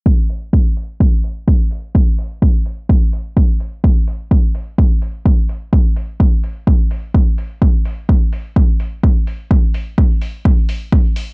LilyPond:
\new DrumStaff \with { instrumentName = "Drums" } \drummode { \time 4/4 \tempo 4 = 127 bd8 hho8 bd8 hho8 bd8 hho8 bd8 hho8 | bd8 hho8 bd8 hho8 bd8 hho8 bd8 hho8 | bd8 hho8 bd8 hho8 bd8 hho8 bd8 hho8 | bd8 hho8 bd8 hho8 bd8 hho8 bd8 hho8 |
bd8 hho8 bd8 hho8 bd8 hho8 bd8 hho8 | bd8 hho8 bd8 hho8 bd8 hho8 bd8 hho8 | }